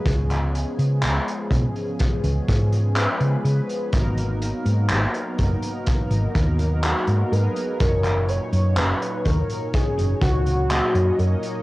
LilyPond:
<<
  \new Staff \with { instrumentName = "Soft synth lead" } { \time 4/4 \key gis \dorian \tempo 4 = 62 r1 | r2. fis'8 b'8 | ais'8 cis''8 b'8 ais'8 gis'8 fis'4 ais'8 | }
  \new Staff \with { instrumentName = "Analog polysynth" } { \time 4/4 \key gis \dorian <eis gis b cis' gis'>2. <eis gis b cis' b'>4 | <fis ais b dis' ais'>2.~ <fis ais b dis' ais'>8 <fis gis b dis' gis'>8 | <ais, fis cis' dis' cis''>2. <fis ais cis' dis' dis''>4 | }
  \new Staff \with { instrumentName = "Fingered electric bass" } { \clef bass \time 4/4 \key gis \dorian cis,8 r16 cis16 cis,16 r16 b,,16 r8 cis,16 gis,8 r16 cis16 cis16 r16 | gis,,8 r16 gis,16 gis,,16 r16 fis,,16 r8 gis,,16 dis,8 r16 gis,16 gis,16 r16 | fis,,8 r16 fis,16 fis,,16 r16 dis,16 r8 fis,,16 cis,8 r16 fis,16 fis,16 r16 | }
  \new DrumStaff \with { instrumentName = "Drums" } \drummode { \time 4/4 <hh bd>16 <hc hh>16 hh16 hh16 <hc hh>16 hh16 <hh bd>16 hh16 <hh bd>16 hh16 <hh bd>16 hh16 <hc hh>16 hh16 hh16 hh16 | <hh bd>16 hh16 hh16 hh16 <hc hh>16 hh16 <hh bd>16 hh16 <hh bd>16 hh16 <hh bd>16 hh16 <hc hh>16 hh16 hh16 hh16 | <hh bd>16 <hc hh>16 hh16 hh16 <hc hh>16 hh16 <hh bd>16 hh16 <hh bd>16 hh16 <hh bd>16 hh16 <hc hh>16 hh16 hh16 hh16 | }
>>